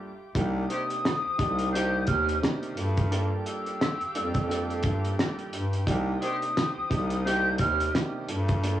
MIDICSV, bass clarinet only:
0, 0, Header, 1, 2, 480
1, 0, Start_track
1, 0, Tempo, 689655
1, 245, Time_signature, 4, 2, 24, 8
1, 6125, End_track
2, 0, Start_track
2, 0, Title_t, "Bass clarinet"
2, 0, Program_c, 0, 71
2, 247, Note_on_c, 0, 36, 110
2, 462, Note_off_c, 0, 36, 0
2, 870, Note_on_c, 0, 36, 49
2, 909, Note_off_c, 0, 36, 0
2, 969, Note_on_c, 0, 36, 99
2, 1419, Note_off_c, 0, 36, 0
2, 1448, Note_on_c, 0, 39, 101
2, 1662, Note_off_c, 0, 39, 0
2, 1928, Note_on_c, 0, 43, 112
2, 2379, Note_off_c, 0, 43, 0
2, 2790, Note_on_c, 0, 41, 50
2, 2829, Note_off_c, 0, 41, 0
2, 2890, Note_on_c, 0, 41, 95
2, 3340, Note_off_c, 0, 41, 0
2, 3368, Note_on_c, 0, 43, 95
2, 3583, Note_off_c, 0, 43, 0
2, 3849, Note_on_c, 0, 43, 97
2, 4063, Note_off_c, 0, 43, 0
2, 4088, Note_on_c, 0, 36, 108
2, 4303, Note_off_c, 0, 36, 0
2, 4710, Note_on_c, 0, 36, 50
2, 4749, Note_off_c, 0, 36, 0
2, 4810, Note_on_c, 0, 36, 102
2, 5260, Note_off_c, 0, 36, 0
2, 5288, Note_on_c, 0, 39, 100
2, 5503, Note_off_c, 0, 39, 0
2, 5768, Note_on_c, 0, 43, 110
2, 6125, Note_off_c, 0, 43, 0
2, 6125, End_track
0, 0, End_of_file